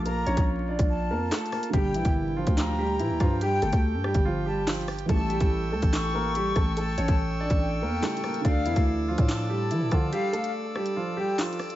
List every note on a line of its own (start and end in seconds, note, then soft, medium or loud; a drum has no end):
0.00 0.25 A#1 loud
0.00 1.69 A#2 medium
0.00 1.67 D3 medium
0.00 1.68 F3 medium
0.00 1.70 F4 medium
0.06 0.23 A#3 medium
0.06 0.23 A#4 medium
0.06 0.45 A#5 loud
0.06 closed hi-hat medium
0.26 0.37 A#1 loud
0.26 0.66 C#4 medium
0.26 0.66 C#5 medium
0.26 closed hi-hat medium
0.37 0.77 A#1 loud
0.37 kick loud
0.37 closed hi-hat medium
0.69 1.08 D4 medium
0.69 1.08 D5 medium
0.79 1.12 A#1 loud
0.79 kick loud
0.79 closed hi-hat medium
0.89 1.69 A5 medium
1.11 1.30 F2 loud
1.11 1.28 A#3 medium
1.11 1.28 A#4 medium
1.32 1.49 A3 medium
1.32 1.49 A4 medium
1.32 snare loud
1.32 clap loud
1.32 closed hi-hat medium
1.39 closed hi-hat medium
1.46 closed hi-hat medium
1.52 1.70 A#3 medium
1.52 1.70 A#4 medium
1.52 cross-stick medium
1.52 open hi-hat medium
1.63 closed hi-hat medium
1.70 1.96 G1 loud
1.70 5.05 A#2 medium
1.70 5.03 D3 medium
1.70 5.04 G3 medium
1.70 1.91 G4 medium
1.70 2.13 G5 loud
1.70 kick loud
1.70 closed hi-hat medium
1.74 1.91 G3 medium
1.74 5.06 D4 medium
1.74 5.06 G4 medium
1.74 5.07 G4 medium
1.74 5.06 G5 medium
1.94 2.04 A#1 loud
1.94 2.35 E3 medium
1.94 2.34 E4 medium
1.94 closed hi-hat medium
2.05 2.45 G1 loud
2.05 kick loud
2.05 closed hi-hat medium
2.36 2.76 F3 medium
2.36 2.76 F4 medium
2.47 3.01 D2 loud
2.47 kick loud
2.47 closed hi-hat medium
2.57 3.37 A#5 medium
2.57 snare loud
2.57 clap loud
2.78 2.96 G3 medium
2.78 2.96 G4 medium
2.99 3.11 A#2 loud
2.99 3.17 E3 medium
2.99 3.17 E4 medium
2.99 closed hi-hat medium
3.10 3.20 D2 loud
3.20 3.61 G2 loud
3.20 3.38 F3 medium
3.20 3.38 F4 medium
3.20 kick medium
3.20 cross-stick medium
3.20 closed hi-hat medium
3.41 3.59 G3 medium
3.41 3.59 G4 medium
3.41 3.81 G5 loud
3.41 closed hi-hat medium
3.62 3.72 G1 loud
3.62 4.02 A3 medium
3.62 4.02 A4 medium
3.62 closed hi-hat medium
3.73 3.95 D2 loud
3.73 kick loud
3.73 closed hi-hat medium
3.94 4.14 G2 loud
4.04 4.22 G3 medium
4.04 4.22 G4 medium
4.04 cross-stick medium
4.14 5.05 G1 loud
4.14 kick medium
4.14 closed hi-hat medium
4.25 4.43 F3 medium
4.25 4.42 F4 medium
4.46 4.64 G3 medium
4.46 4.63 G4 medium
4.46 4.66 A5 medium
4.67 4.85 F3 medium
4.67 4.84 F4 medium
4.67 snare loud
4.67 clap loud
4.67 closed hi-hat medium
4.74 closed hi-hat medium
4.81 closed hi-hat soft
4.88 cross-stick medium
4.88 open hi-hat medium
4.99 closed hi-hat medium
5.05 5.39 A1 loud
5.05 7.97 E3 medium
5.05 7.98 G3 medium
5.05 5.26 A4 medium
5.05 11.76 A4 medium
5.05 8.41 G5 medium
5.05 5.49 A5 loud
5.05 8.41 C#6 medium
5.05 11.76 E6 medium
5.05 kick loud
5.05 closed hi-hat medium
5.09 7.99 A3 medium
5.09 5.27 A3 medium
5.09 8.00 E4 medium
5.09 8.01 G4 medium
5.29 5.70 G3 medium
5.29 5.69 G4 medium
5.29 closed hi-hat medium
5.40 5.74 A1 loud
5.40 kick loud
5.40 closed hi-hat medium
5.72 5.82 C#2 loud
5.72 6.12 A3 medium
5.72 6.12 A4 medium
5.82 6.53 A1 loud
5.82 kick medium
5.82 closed hi-hat medium
5.93 6.73 C#6 medium
5.93 snare loud
5.93 clap loud
6.14 6.32 A#3 medium
6.14 6.31 A#4 medium
6.35 6.53 G3 medium
6.35 6.53 G4 medium
6.35 closed hi-hat medium
6.56 6.96 A1 loud
6.56 6.74 A3 medium
6.56 6.73 A4 medium
6.56 kick medium
6.56 cross-stick medium
6.56 closed hi-hat medium
6.77 6.95 A3 medium
6.77 6.94 A4 medium
6.77 7.16 A5 loud
6.77 closed hi-hat medium
6.98 7.08 A1 loud
6.98 7.38 C#4 medium
6.98 7.37 C#5 medium
6.98 closed hi-hat medium
7.08 7.49 A1 loud
7.08 kick loud
7.08 closed hi-hat medium
7.40 7.80 D4 medium
7.40 7.79 D5 medium
7.50 7.83 A1 loud
7.50 kick medium
7.50 closed hi-hat medium
7.61 8.41 G5 medium
7.82 8.02 E2 loud
7.82 8.00 A#3 medium
7.82 7.99 A#4 medium
8.01 8.44 C#3 medium
8.01 8.44 G3 medium
8.01 8.43 A3 soft
8.01 8.21 A3 medium
8.01 8.45 E4 medium
8.01 8.20 A4 medium
8.01 snare loud
8.01 clap loud
8.01 closed hi-hat medium
8.05 8.46 G4 medium
8.10 closed hi-hat medium
8.17 closed hi-hat medium
8.24 8.42 A#3 medium
8.24 8.41 A#4 medium
8.24 cross-stick medium
8.24 open hi-hat medium
8.34 closed hi-hat medium
8.41 11.74 D3 medium
8.41 11.76 A3 medium
8.41 8.62 D5 medium
8.41 8.84 F5 loud
8.41 11.76 D6 medium
8.45 8.67 D2 loud
8.45 8.62 D4 medium
8.45 11.76 D4 medium
8.45 11.76 A4 medium
8.45 11.76 D5 medium
8.45 kick loud
8.45 closed hi-hat medium
8.65 8.76 F2 loud
8.65 9.05 E3 medium
8.65 9.05 E4 medium
8.65 closed hi-hat medium
8.76 9.17 D2 loud
8.76 kick loud
8.76 closed hi-hat medium
9.08 9.48 F3 medium
9.08 9.47 F4 medium
9.18 9.72 A2 loud
9.18 kick loud
9.18 closed hi-hat medium
9.29 10.09 A5 loud
9.29 snare loud
9.29 clap loud
9.50 9.67 G3 medium
9.50 9.67 G4 medium
9.71 9.89 E3 medium
9.71 9.83 F3 loud
9.71 9.88 E4 medium
9.71 closed hi-hat medium
9.81 9.91 A2 loud
9.91 10.12 D3 loud
9.91 10.10 F3 medium
9.91 10.09 F4 medium
9.91 kick medium
9.91 cross-stick medium
9.91 closed hi-hat medium
10.12 10.30 G3 medium
10.12 10.30 G4 loud
10.12 10.52 F5 loud
10.12 closed hi-hat medium
10.33 10.73 A3 medium
10.33 10.73 A4 medium
10.33 closed hi-hat medium
10.44 closed hi-hat medium
10.76 10.94 G3 medium
10.76 10.93 G4 medium
10.76 cross-stick medium
10.86 closed hi-hat medium
10.96 11.14 F3 medium
10.96 11.14 F4 medium
11.17 11.35 G3 medium
11.17 11.34 G4 medium
11.17 11.37 G5 medium
11.38 11.57 F3 medium
11.38 11.56 F4 medium
11.38 snare loud
11.38 clap loud
11.38 closed hi-hat medium
11.46 closed hi-hat medium
11.53 closed hi-hat soft
11.59 cross-stick medium
11.59 open hi-hat medium
11.70 closed hi-hat medium